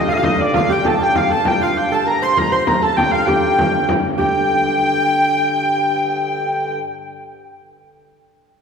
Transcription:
Already playing: G2 D3
0.07 F4 F5
0.13 F4 D#5
0.17 F5
0.22 D#4 D#5, frame drum
0.36 D4 D#5
0.41 D5
0.53 G2 D3 F4 F5, frame drum
0.69 G4 G5
0.85 A4 A5, frame drum
1.00 G4 G5
1.15 F4 F5, frame drum
1.30 A4 A5
1.45 G4 G5, frame drum
1.60 F4 F5, frame drum
1.76 G4 G5
1.91 A4 A5
2.06 A#4 A#5
2.22 C5 C6
2.37 A#4 A#5, frame drum
2.51 C5 C6, frame drum
2.66 A#4 A#5, frame drum
2.82 A4 A5
2.97 G5, frame drum
3.11 F4 F5
3.27 G4 G5, frame drum
3.44 frame drum
3.59 frame drum
3.89 frame drum
4.18 G2 D3 G4 G5, frame drum

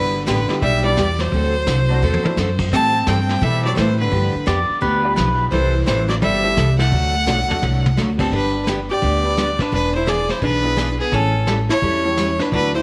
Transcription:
Already playing: G1 D3 G3 B3 E4 G4 B4
0.26 A1 D3 G3 B3 E4 G4 B4, snare, hi-hat pedal
0.47 G3 B3 D4 E4 G4, muted upright bass stroke, snare
0.62 B1 G3 B3 E4 G4 E5, brush sweep, kick
0.82 G3 B3 D4 E4 G4 D5
0.97 E2 G3 B3 E4 G4, snare, hi-hat pedal
1.19 F#3 C5, snare
1.32 D2 D3 A3 C4 F#4 A4, brush sweep, kick
1.66 C2 D3 A3 C4 F#4 A4, snare, hi-hat pedal
1.88 F#3 A3 C4 D4 F#4
2.02 E2 D3 A3 C4 F#4 A4
2.14 high tom
2.22 F#3 A3 C4 D4 E4, muted upright bass stroke, high tom
2.37 F#2 D3 A3 C4 F#4 A4, snare, hi-hat pedal
2.59 kick, crash
2.72 A2 E3 G3 C4 E4 A4 A5, brush sweep, kick
3.07 G2 E3 G3 C4 E4 A4 G5, snare, hi-hat pedal
3.29 snare
3.41 B2 E3 G3 C4 E4 A4 E5, brush sweep, kick
3.63 F#3 G3 A3 C4 E4 G4 D5
3.75 A2 E3 G3 C4 E4 A4 C5, snare, hi-hat pedal
3.80 E3
4.00 D3 B4
4.11 G2 D3 F3 B3 D4 G4, brush sweep, kick
4.35 muted upright bass stroke
4.46 F2 D3 F3 B3 D4 G4 D5, snare, hi-hat pedal
4.70 muted upright bass stroke
4.81 D2 D3 F3 B3 D4 G4 B4, brush sweep, kick
5.03 G3 B3 D4 F4 G4
5.16 B1 D3 F3 B3 D4 G4 B4, snare, hi-hat pedal
5.51 C2 C3 E3 G3 C4 E4 A4 C5, brush sweep, kick
5.86 A1 C3 E3 G3 C4 E4 A4 C5, snare, hi-hat pedal
6.09 F#3 D5, snare
6.22 G1 C3 E3 G3 C4 E4 A4 E5, brush sweep, kick
6.43 G3 A3 C4 E4 G4
6.57 C2 C3 E3 G3 C4 E4 A4, snare, hi-hat pedal
6.79 A3 F#5, snare
6.92 D2 D3 F#3 A3 D4 F#4, brush sweep, kick
7.26 B1 D3 F#3 A3 D4 F#4, snare, hi-hat pedal
7.48 F#3 A3 D4 F#4 A4, muted upright bass stroke, floor tom
7.62 C2 D3 F#3 A3 D4 F#4, mid tom
7.86 mid tom
7.97 D2 D3 F#3 A3 D4 F#4, snare, hi-hat pedal
8.17 G3 B3 C4 D4 G4 A4, kick, crash
8.32 G1 D3 G3 B3 D4 G4 B4, brush sweep, kick
8.67 D3 G3 B3 D4 G4, snare, hi-hat pedal
8.90 G4 D5
9.02 D2 D3 G3 B3 D4 G4, brush sweep, kick
9.23 B3 D4 G4 B4
9.37 D3 G3 B3 D4 G4, snare, hi-hat pedal
9.59 D4 B4, kick, snare
9.72 E1 E3 B3 D4 G#4 B4, brush sweep, kick
9.95 E4 C5
10.06 E3 B3 D4 G#4 D5, snare, hi-hat pedal
10.29 E4 C5, snare
10.42 B1 E3 B3 D4 G#4 B4, brush sweep, kick
10.63 B3 D4 E4 G#4
10.76 E3 B3 D4 G#4, snare, hi-hat pedal
11.00 B3 G#4
11.12 A1 E3 G3 C#4 E4 A4, brush sweep, kick
11.47 E3 G3 C#4 E4 A4, snare, hi-hat pedal
11.69 E4 C#5, snare
11.82 E2 E3 G3 C#4 E4 A4, brush sweep, kick
12.03 A3 C#4 E4 G4
12.17 E3 G3 C#4 E4 A4, snare, hi-hat pedal
12.39 D4 B4, snare
12.51 D2 D3 F#3 A3 D4 E4 F#4 B4, brush sweep, kick
12.75 E4 C5

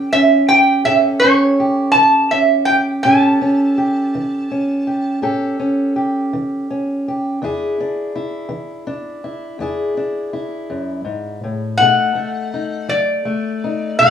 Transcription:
Already playing: E3 C#4 G4 A4 G5
0.13 C#4 E5
0.49 G4 G5
0.84 A2 C#4 G4 A4 E5
1.20 C#5
1.24 C#4
1.60 G4
1.92 E3 A5
2.31 C#4 E5
2.65 G5
2.70 G4
3.03 A2 C#4 G4 A4 A5
3.42 C#4
3.78 G4
4.15 E3
4.51 C#4
4.87 G4
5.22 A2 C#4 G4 A4
5.60 C#4
5.96 G4
6.33 E3
6.70 C#4
7.08 G4
7.42 E2 D4 E4 G#4
7.80 D4
8.16 E4
8.49 E3
8.87 D4
9.24 E4
9.59 E2 D4 E4 G#4
9.97 D4
10.33 E4
10.70 F#2
11.05 G#2
11.44 A2
11.77 B2 A3 F#5
11.82 D#4 A4
12.15 A3
12.54 D#4
12.89 F#3 D5
13.25 A3
13.64 D#4
13.99 B2 A3 D#4 A4 F#5

